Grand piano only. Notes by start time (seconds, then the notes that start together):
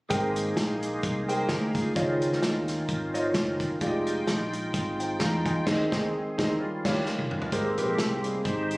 0.10 G#2 G#4 A#4 C5 G5
1.28 G#4 A#4 C5 G5
1.95 C#3 F4 C5 C#5 D#5
3.14 F4 C5 C#5 D#5
3.81 F4 G4 G#4 D5
3.87 D#5
4.99 C5 G5
5.21 F5 A#5
5.46 D#5 G#5
5.66 D#3 D#4 G#4 C5
5.72 D#5
5.92 D#3 D#4 G#4 C5
5.98 D#5
6.38 D#3 D#4 G#4 C5
6.44 D#5
6.85 F4 G4 C#5 F5
7.52 G#2 G4 G#4 A#4 C5
7.77 G4 G#4 A#4 B4
7.83 C5